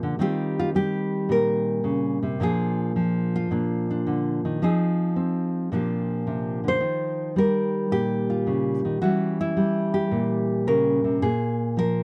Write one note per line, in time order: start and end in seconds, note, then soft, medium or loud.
0.00 0.17 A#2 medium
0.00 0.19 D3 medium
0.00 0.19 F3 medium
0.00 0.19 D4 soft
0.00 0.21 F4 soft
0.00 0.21 G#4 medium
0.19 1.83 D#3 medium
0.19 0.74 G3 soft
0.19 2.41 C4 soft
0.19 0.59 F4 soft
0.19 0.75 G4 medium
0.59 0.69 F4 medium
0.75 2.38 G3 medium
0.75 1.30 G4 medium
1.29 2.38 A#2 medium
1.29 2.41 A#4 medium
1.84 2.22 C#3 medium
2.23 2.40 C3 medium
2.40 3.50 A#2 medium
2.40 2.95 F3 soft
2.40 3.51 D4 soft
2.40 3.35 F4 soft
2.40 3.90 G#4 medium
2.96 4.62 F3 medium
3.36 4.62 F4 medium
3.51 4.59 A#2 medium
3.51 3.89 D4 soft
3.91 4.60 D4 soft
4.07 4.44 D3 medium
4.45 4.61 D#3 medium
4.62 5.72 F3 medium
4.62 5.16 C4 medium
4.62 5.70 D#4 medium
4.62 5.70 G#4 medium
5.16 5.73 C4 medium
5.72 6.79 A#2 medium
5.72 7.36 F3 soft
5.72 6.80 D4 soft
5.72 6.80 F4 soft
5.72 6.68 G4 soft
6.27 6.63 C3 medium
6.64 6.80 D3 medium
6.68 7.38 C5 medium
6.81 8.46 D#3 medium
7.36 9.03 G3 medium
7.36 7.92 A#4 medium
7.91 8.99 A#2 medium
7.91 9.02 G4 medium
8.30 8.99 F4 soft
8.47 8.84 C#3 medium
8.85 9.01 D#3 medium
9.02 10.66 E3 medium
9.02 9.56 G3 soft
9.02 11.20 C#4 soft
9.02 9.39 F#4 medium
9.41 10.50 E4 medium
9.57 11.25 G3 medium
9.94 10.66 G4 medium
10.11 11.19 A#2 medium
10.67 11.04 C#3 medium
10.67 11.22 A#4 medium
11.04 11.21 C3 medium
11.22 12.03 A#2 medium
11.22 11.76 G#4 medium
11.77 12.03 F3 medium
11.77 12.03 A#4 medium